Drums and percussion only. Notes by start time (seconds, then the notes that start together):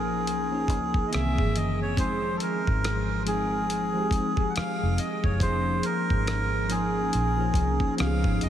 0.27 closed hi-hat
0.68 kick, closed hi-hat
0.94 kick
1.13 cross-stick, closed hi-hat
1.38 kick
1.56 closed hi-hat
1.97 kick, closed hi-hat
2.40 closed hi-hat
2.67 kick
2.84 cross-stick, closed hi-hat
3.27 closed hi-hat
3.70 closed hi-hat
4.11 kick, closed hi-hat
4.37 kick
4.56 cross-stick, closed hi-hat
4.98 closed hi-hat
5.24 kick
5.40 kick, closed hi-hat
5.83 closed hi-hat
6.10 kick
6.27 cross-stick, closed hi-hat
6.70 closed hi-hat
7.13 closed hi-hat
7.54 kick, closed hi-hat
7.80 kick
7.98 cross-stick, closed hi-hat
8.24 kick
8.41 closed hi-hat